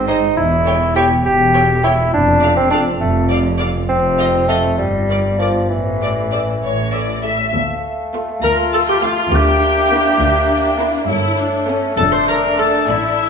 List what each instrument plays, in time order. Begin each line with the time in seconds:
Already playing: double bass section G#1, cello section G#2
0.07 bassoon D#4, viola section G#4, violin section C5 D#5
0.37 double bass section E1, cello section E2, bassoon E4
0.64 viola section A4, violin section C#5 G5
0.95 bassoon G4, viola section A4, violin section C#5 G5
1.24 double bass section E1, cello section E2, bassoon G4
1.54 viola section A4, violin section C#5 G5
1.83 bassoon E4, viola section A4, violin section C#5 G5
2.12 double bass section F1, cello section F2, bassoon D4
2.42 viola section A4, violin section D5 F5
2.57 bassoon C4
2.71 bassoon D4, viola section A4, violin section D5 F5
3.00 double bass section F1, cello section F2, bassoon A3
3.29 viola section A4, violin section D5 F5
3.59 viola section A4, violin section D5 F5
3.88 double bass section F1, cello section F2, bassoon C4
4.18 viola section A4, violin section D#5 F5
4.48 bassoon A3, viola section A4, violin section D#5 F5
4.78 double bass section G1, cello section G2, bassoon G3
5.08 viola section A#4, violin section D5
5.39 bassoon F3, viola section A#4, violin section D5
5.69 double bass section A1, cello section A2, bassoon E3
6.01 viola section A4, violin section D5
6.31 viola section A4, violin section D5
6.61 double bass section A1, cello section A2, violin section C#5
6.92 viola section A4, violin section D5 E5
7.22 viola section A4, violin section E5
7.53 cello section D2, double bass section D2, bassoon A3, flute F5
8.14 violin section A3 F4
8.42 cello section D2, double bass section D2, viola section F4, clarinet A#4, harpsichord A#4, oboe A#4, violin section A#5
8.73 clarinet A4, oboe A4, harpsichord A4, violin section A5
8.88 clarinet G4, harpsichord G4, oboe G4, violin section G5
9.02 violin section A3 F4 F5, harpsichord F4, clarinet F4, oboe F4
9.31 double bass section D2, cello section D2, bassoon A#3, viola section D4, harpsichord G4, clarinet G4, flute E5, violin section G5
9.35 oboe G4
9.92 violin section A#3 E4
10.19 cello section D2, double bass section D2
10.79 violin section A#3 E4
11.07 double bass section G1, cello section G2, bassoon A3, viola section E4, flute C#5
11.37 viola section D4
11.68 violin section A3 C#4, viola section C#4
11.97 double bass section F1, cello section F2, viola section D4, oboe A4, harpsichord A4, clarinet A4, flute D5, violin section A5
12.12 harpsichord C5, clarinet C5, oboe C5, violin section C6
12.28 clarinet A#4, harpsichord A#4, oboe A#4, violin section A#5
12.58 violin section A3 D4 A5, harpsichord A4, clarinet A4, oboe A4
12.88 double bass section A1, cello section A2, viola section E4, clarinet E4, oboe E4, harpsichord E4, violin section E5